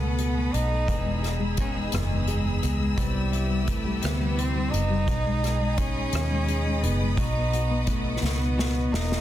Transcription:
Already playing: C#2 B2 B3 F#4 A4 F#5 B5 D#6
0.02 A3
0.18 F#4, closed hi-hat
0.36 A3
0.53 B1 B3 D#4, closed hi-hat
0.71 A3
0.87 E1 E2 B2 D#3 G#3 B3 D#4 G#4 E6, kick, closed hi-hat
1.05 G#3
1.22 D#3 G#3 B3 G#4, cross-stick, closed hi-hat
1.39 G#3
1.57 D#3 G#3 B3 C#4 G#4, kick, closed hi-hat
1.75 G#3
1.92 F#1 E2 B2 D#3 G#3 B3 G#4, cross-stick, closed hi-hat
2.10 G#3
2.27 D#3 G#3 B3 G#4, closed hi-hat
2.46 G#3
2.62 C#2 D#3 G#3 B3 G#4, closed hi-hat
2.80 G#3
2.97 C3 E3 G3 B3 E4 G4 B4, kick, closed hi-hat
3.14 G3
3.32 G3 B3 E4, closed hi-hat
3.50 G3
3.66 E3 G3 A3 B3 E4, kick, closed hi-hat
3.85 G3
4.01 D2 C3 E3 G3 B3 E4, closed hi-hat
4.05 cross-stick
4.19 G3
4.37 E3 G3 C4 E4, closed hi-hat
4.55 G3
4.71 F#1 G3 B3 D#4, closed hi-hat
4.90 G3
5.07 B1 B2 D#3 G#3 D#4 G#4 D#5 B5 D#6, kick, closed hi-hat
5.26 G#3
5.42 G#3 D#4 G#4, cross-stick, closed hi-hat
5.61 G#3
5.77 D#3 G#3 C#4 D#4 G#4, kick, closed hi-hat
5.96 G#3
6.12 D#2 B2 D#3 G#3 D#4 G#4, cross-stick, closed hi-hat
6.31 G#3
6.47 D#3 G#3 D#4 G#4, closed hi-hat
6.66 G#3
6.82 F#1 G#3 B3 D#4 G#4, closed hi-hat
7.01 G#3
7.17 B1 B2 F#3 B3 D#4 F#4, kick, closed hi-hat
7.36 B3
7.52 B3 D#4 F#4, closed hi-hat
7.71 B3
7.87 F#3 A3 B3 D#4 F#4, kick, closed hi-hat
8.06 B3
8.22 C#2 B2 F#3 B3 D#4 F#4, snare
8.41 B3
8.57 F#3 B3 D#4 F#4, snare
8.75 B3
8.91 E1 B3 D#4 F#4, snare
9.10 B3, snare

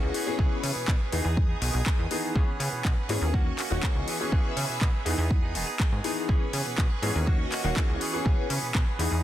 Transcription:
Already playing: E3 A#3 B3 C#4 F#4 G#4 D#5 C#6
0.02 C#2
0.14 E3 B3 C#4 G#4 B4, open hi-hat
0.26 E3 B3 C#4 G#4
0.38 C#2 E3 B3 C#4 G#4, kick
0.63 C#3 E3 B3 C#4 G#4, open hi-hat
0.76 B2
0.88 B2 G#4, kick, clap
1.00 B3 C#4 G#4
1.12 E2 D#3 E3 B3 D#4 G#4 D#6, open hi-hat
1.24 E2 B3 D#4 G#4
1.37 kick
1.49 B3 D#4 G#4
1.61 B1 D#3 B3 D#4 G#4, open hi-hat
1.73 B1 B3 D#4 G#4
1.86 D#3 B3 D#4 G#4, kick, clap
1.99 E2
2.10 D#3 E3 B3 D#4 G#4, open hi-hat
2.35 C#2 E3 B3 C#4 G#4 B4 C#6, kick
2.60 C#3 E3 B3 C#4 G#4, open hi-hat
2.73 B2
2.84 B2 E3 B3 C#4 G#4, kick, clap
2.97 B3 C#4 G#4
3.09 G#2 E3 B3 C#4 G#4, open hi-hat
3.21 D#2 B3 C#4 G#4
3.33 D#3 A#3 C#4 F#4 D#5, kick
3.46 C#4 F#4
3.58 A#3 C#4 F#4, clap, open hi-hat
3.70 D#1 D#3 A#3 C#4 F#4
3.82 E3 A#3 B3 C#4 F#4 G#4, kick, clap
3.95 C#2
4.07 E3 B3 C#4 G#4 B4 E5, open hi-hat
4.19 E3 B3 C#4 G#4
4.31 C#2 E3 B3 C#4 G#4, kick
4.56 C#3 E3 B3 C#4 G#4, open hi-hat
4.69 B2
4.81 B2 B3 C#4 G#4, kick, clap
4.93 B3 C#4 G#4
5.05 E2 D#3 E3 B3 D#4 G#4 D#6, open hi-hat
5.18 E2 B3 D#4 G#4
5.31 kick
5.42 B3 D#4 G#4
5.55 E1 D#3 B3 D#4 G#4, open hi-hat
5.67 B3 D#4 G#4
5.79 D#3 B3, kick, clap
5.92 G#2
6.03 D#3 E3 B3 D#4 G#4, open hi-hat
6.28 C#2 E3 B3 C#4 G#4 B4 C#6, kick
6.53 C#3 E3 B3 C#4 G#4, open hi-hat
6.66 B2
6.77 B2 E3 B3 C#4 G#4, kick, clap
6.90 B3 C#4 G#4
7.02 G#2 E3 B3 C#4 G#4, open hi-hat
7.14 D#2 B3 C#4 G#4
7.26 D#3 A#3 C#4 F#4 D#5, kick
7.39 C#4 F#4
7.51 A#3 C#4 F#4, clap, open hi-hat
7.63 D#1 D#3 A#3 C#4 F#4
7.75 E3 A#3 B3 C#4 F#4 G#4, kick, clap
7.89 C#2
8.00 E3 B3 C#4 G#4 B4, open hi-hat
8.13 E3 B3 C#4 G#4
8.25 C#2 E3 B3 C#4 G#4, kick
8.49 C#3 E3 B3 C#4 G#4, open hi-hat
8.63 B2
8.74 B2 E3 B3 C#4 G#4, kick, clap
8.86 B3 C#4 G#4
8.98 E2 E3 B3 D#4 G#4 D#6, open hi-hat
9.11 E2 B3 D#4 G#4

